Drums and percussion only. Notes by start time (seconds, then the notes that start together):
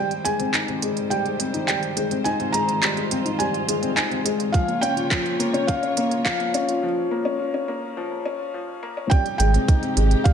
0.11 closed hi-hat
0.25 closed hi-hat
0.40 closed hi-hat
0.54 clap, closed hi-hat
0.68 closed hi-hat
0.82 closed hi-hat
0.97 closed hi-hat
1.11 closed hi-hat
1.26 closed hi-hat
1.40 closed hi-hat
1.54 closed hi-hat
1.68 clap, closed hi-hat
1.83 closed hi-hat
1.97 closed hi-hat
2.11 closed hi-hat
2.25 closed hi-hat
2.40 closed hi-hat
2.54 closed hi-hat
2.69 closed hi-hat
2.83 clap, closed hi-hat
2.97 closed hi-hat
3.11 closed hi-hat
3.26 closed hi-hat
3.40 closed hi-hat
3.54 closed hi-hat
3.69 closed hi-hat
3.83 closed hi-hat
3.97 clap, closed hi-hat
4.11 closed hi-hat
4.26 closed hi-hat
4.40 closed hi-hat
4.54 kick, closed hi-hat
4.68 closed hi-hat
4.83 closed hi-hat
4.97 closed hi-hat
5.11 kick, clap, closed hi-hat
5.26 closed hi-hat
5.40 closed hi-hat
5.54 closed hi-hat
5.68 kick, closed hi-hat
5.83 closed hi-hat
5.97 closed hi-hat
6.11 closed hi-hat
6.26 kick, clap, closed hi-hat
6.40 closed hi-hat
6.54 closed hi-hat
6.69 closed hi-hat
9.11 kick, closed hi-hat
9.26 closed hi-hat
9.40 closed hi-hat
9.54 closed hi-hat
9.68 kick, closed hi-hat
9.83 closed hi-hat
9.97 closed hi-hat
10.11 closed hi-hat
10.25 kick, closed hi-hat